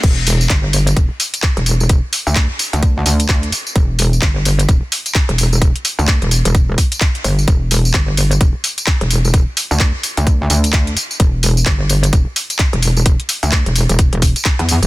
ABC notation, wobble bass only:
X:1
M:4/4
L:1/16
Q:"Swing 16ths" 1/4=129
K:Em
V:1 name="Wobble bass" clef=bass
E,,,4 G,,,4 E,,, z4 E,,,3- | E,,, z2 D,,2 z2 D,,3 D,,4 z2 | E,,,4 G,,,4 E,,, z4 E,,,3- | E,,, z2 D,,2 E,,,2 E,,,3 z4 G,,,2 |
E,,,4 G,,,4 E,,, z4 E,,,3- | E,,, z2 D,,2 z2 D,,3 D,,4 z2 | E,,,4 G,,,4 E,,, z4 E,,,3- | E,,, z2 D,,2 E,,,2 E,,,2 E,,,2 z2 E,,2 E,,, |]